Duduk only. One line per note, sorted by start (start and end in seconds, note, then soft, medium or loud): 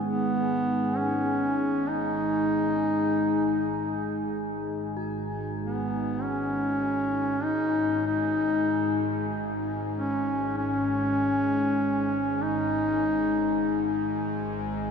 0.03 0.98 B3 loud
0.97 1.90 C#4 medium
1.89 4.36 D#4 loud
5.62 6.24 B3 medium
6.22 7.46 C#4 medium
7.44 8.06 D#4 loud
8.07 9.28 D#4 medium
9.96 10.53 C#4 medium
10.57 12.44 C#4 medium
12.42 14.33 D#4 medium